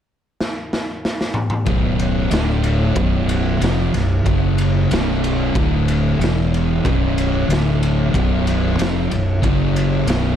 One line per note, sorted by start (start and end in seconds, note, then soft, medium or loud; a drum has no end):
0.41 snare medium
0.73 snare medium
1.05 snare medium
1.21 snare medium
1.34 mid tom loud
1.50 mid tom loud
1.65 2.28 B0 medium
1.65 2.30 B1 medium
1.65 2.31 F#2 loud
1.65 2.31 B2 loud
1.65 kick loud
1.65 ride loud
1.99 ride medium
2.31 2.92 D1 loud
2.31 2.95 D2 loud
2.31 2.95 A2 loud
2.31 2.96 D3 loud
2.31 snare loud
2.31 ride loud
2.64 ride medium
2.96 3.57 B0 loud
2.96 3.60 B1 medium
2.96 3.60 F#2 loud
2.96 3.61 B2 medium
2.96 kick loud
2.96 ride loud
3.29 ride medium
3.60 3.91 F1 medium
3.60 3.92 F2 medium
3.60 3.93 C3 loud
3.60 3.93 F3 loud
3.60 snare loud
3.60 ride loud
3.93 4.24 B0 medium
3.93 4.20 B1 medium
3.93 4.19 F#2 medium
3.93 snare soft
3.93 ride medium
4.26 4.87 F#1 medium
4.26 4.90 F#2 medium
4.26 4.90 C#3 loud
4.26 4.90 F#3 loud
4.26 kick loud
4.26 ride loud
4.58 ride medium
4.91 5.51 B0 medium
4.91 5.55 B1 loud
4.91 5.55 F#2 loud
4.91 5.55 B2 loud
4.91 snare loud
4.91 ride loud
5.24 ride medium
5.55 6.16 D1 loud
5.55 6.19 D2 medium
5.55 6.20 A2 loud
5.55 6.20 D3 medium
5.55 kick loud
5.55 ride medium
5.88 ride medium
6.19 6.80 E1 medium
6.19 6.84 E2 medium
6.19 6.84 B2 medium
6.19 6.84 E3 loud
6.19 ride medium
6.24 snare loud
6.54 ride medium
6.84 7.45 B0 medium
6.84 7.48 B1 medium
6.84 7.49 F#2 medium
6.84 7.49 B2 medium
6.84 kick loud
6.84 ride medium
7.18 ride medium
7.48 8.10 D1 medium
7.48 8.12 D2 loud
7.48 8.13 A2 loud
7.48 8.13 D3 loud
7.48 ride loud
7.53 snare loud
7.83 ride medium
8.13 8.75 B0 loud
8.13 8.77 B1 loud
8.13 8.78 F#2 medium
8.13 8.78 B2 loud
8.13 kick medium
8.13 ride medium
8.47 ride medium
8.78 9.09 F1 loud
8.78 9.09 F2 medium
8.78 9.10 C3 loud
8.78 9.10 F3 loud
8.78 ride medium
8.82 snare loud
9.11 9.41 B0 medium
9.11 9.37 B1 medium
9.11 9.37 F#2 medium
9.11 ride medium
9.42 10.04 F#1 medium
9.42 10.06 F#2 loud
9.42 10.06 C#3 loud
9.42 10.07 F#3 loud
9.42 kick medium
9.42 ride loud
9.76 ride medium
10.07 10.36 B0 loud
10.07 10.36 B1 medium
10.07 10.36 F#2 loud
10.07 10.36 B2 loud
10.07 snare loud
10.07 ride loud